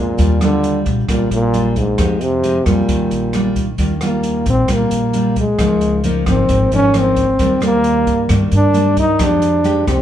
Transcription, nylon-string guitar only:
0.00 0.16 F3 soft
0.00 0.16 G#3 medium
0.00 0.17 C4 soft
0.00 0.17 D4 medium
0.18 0.37 G3 medium
0.18 0.37 D4 medium
0.18 0.37 F4 medium
0.41 1.05 G3 medium
0.41 1.05 D4 medium
0.41 1.05 F4 medium
1.09 1.96 A#2 soft
1.09 1.50 G3 soft
1.09 1.50 D4 soft
1.09 1.51 F4 soft
1.53 1.82 G3 soft
1.53 1.83 D4 soft
1.53 1.83 F4 medium
1.98 2.86 F3 soft
1.98 2.27 G#3 soft
1.98 2.27 D#4 soft
1.98 2.27 G4 soft
2.43 2.57 G#3 medium
2.43 2.57 D#4 medium
2.43 2.57 G4 medium
2.67 3.30 G3 medium
2.67 3.30 D4 soft
2.67 3.31 F4 soft
2.90 3.77 D#3 soft
3.34 3.64 G3 soft
3.34 3.64 D4 soft
3.34 3.65 F4 medium
3.78 4.67 D#3 soft
3.78 3.92 G3 soft
3.78 3.92 D4 soft
3.78 3.92 F4 soft
4.01 4.65 G3 medium
4.01 4.66 D4 medium
4.01 4.66 F4 medium
4.68 5.56 A#2 soft
4.68 5.10 G3 medium
4.68 5.10 D4 soft
4.68 5.10 F4 soft
5.14 5.43 G3 medium
5.14 5.43 D4 soft
5.14 5.43 F4 medium
5.59 6.47 C#3 soft
5.59 6.01 F3 medium
5.59 6.01 A#3 soft
5.59 6.01 D#4 medium
6.04 6.23 F3 medium
6.04 6.23 A#3 medium
6.04 6.24 D#4 medium
6.26 6.68 F3 soft
6.26 6.68 A#3 medium
6.26 6.68 D#4 medium
6.49 7.37 G#2 medium
6.72 6.91 F3 medium
6.72 6.91 A#3 soft
6.72 6.91 D#4 medium
6.94 7.24 F3 soft
6.94 7.25 A#3 soft
6.94 7.25 D#4 medium
7.39 8.27 D#3 soft
7.39 7.58 G3 soft
7.39 7.59 A#3 medium
7.39 7.59 D4 medium
7.61 8.25 G3 medium
7.61 8.26 A#3 medium
7.61 8.26 D4 medium
8.29 9.17 D#3 soft
8.29 8.71 G3 soft
8.29 8.71 A#3 soft
8.29 8.71 D4 medium
8.73 9.03 G3 soft
8.73 9.03 A#3 medium
8.73 9.04 D4 medium
9.20 10.02 F3 soft
9.20 9.61 G#3 soft
9.20 9.61 G4 medium
9.64 9.83 G#3 medium
9.64 9.84 D#4 medium
9.64 9.84 G4 medium
9.87 10.02 G#3 soft
9.87 10.02 D#4 medium
9.87 10.02 G4 medium

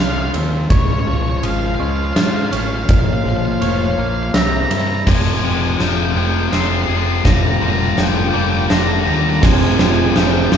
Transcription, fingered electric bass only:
0.00 0.29 C2 medium
0.34 0.65 D#2 medium
0.70 1.02 C#2 medium
1.07 1.38 C#2 medium
1.44 1.75 G#1 medium
1.80 2.11 C#2 medium
2.16 2.47 G#2 medium
2.53 2.84 A1 medium
2.89 3.20 A#1 medium
3.25 3.56 A#1 medium
3.61 3.93 F1 medium
3.98 4.29 A#1 medium
4.34 4.65 C2 medium
4.70 5.02 G2 medium
5.07 5.39 F1 medium
5.43 5.76 F1 medium
5.79 6.12 F1 medium
6.15 6.48 F1 medium
6.52 6.85 F1 medium
6.88 7.21 F1 medium
7.25 7.58 F1 medium
7.60 7.93 F1 medium
7.97 8.30 F1 medium
8.34 8.66 F1 medium
8.70 9.03 F1 medium
9.07 9.39 D#2 medium
9.43 9.75 F1 medium
9.79 10.12 F1 medium
10.16 10.48 F1 medium
10.52 10.57 F1 medium

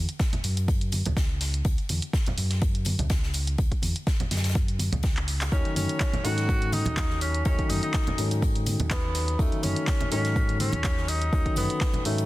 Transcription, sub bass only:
0.44 1.02 F#2 loud
1.06 1.62 C#2 medium
1.65 1.76 C#2 medium
1.89 2.00 E2 medium
2.38 2.96 F#2 loud
2.99 3.56 C#2 medium
3.59 3.70 C#2 loud
3.83 3.94 E2 loud
4.31 4.89 F#2 loud
4.93 5.49 C#2 medium
5.52 5.63 D#2 loud
5.76 5.87 F#2 medium
6.25 6.83 G#2 loud
6.86 7.43 D#2 medium
7.46 7.57 D#2 loud
7.70 7.81 F#2 loud
8.18 8.76 G#2 loud
8.80 9.36 D#2 medium
9.39 9.50 D#2 loud
9.63 9.74 F#2 loud
10.12 10.70 G#2 loud
10.73 11.30 D#2 medium
11.33 11.44 D#2 loud
11.57 11.68 F#2 loud
12.05 12.26 G#2 loud

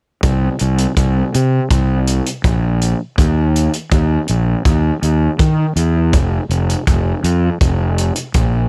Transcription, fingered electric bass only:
0.23 0.48 C2 medium
0.61 0.85 C2 medium
0.97 1.21 C2 medium
1.35 1.59 C3 medium
1.71 2.19 C2 medium
2.44 2.93 A#1 medium
3.18 3.67 D#2 medium
3.92 4.16 D#2 medium
4.29 4.54 A#1 medium
4.65 4.90 D#2 medium
5.02 5.27 D#2 medium
5.40 5.64 D#3 medium
5.76 6.15 E2 medium
6.13 6.38 F1 medium
6.49 6.74 F1 medium
6.88 7.12 F1 medium
7.24 7.48 F2 medium
7.61 8.10 F1 medium
8.35 8.69 A#1 medium

